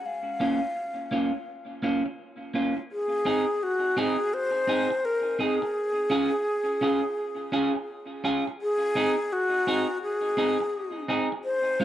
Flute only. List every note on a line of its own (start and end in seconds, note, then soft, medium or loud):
0.06 1.48 F5 medium
2.92 3.65 G#4 loud
3.63 4.00 F#4 loud
3.99 4.35 G#4 loud
4.34 5.07 C5 loud
5.05 5.42 A#4 loud
5.41 8.24 G#4 loud
8.62 9.34 G#4 loud
9.33 10.02 F#4 loud
10.02 11.05 G#4 loud
11.45 11.85 C5 loud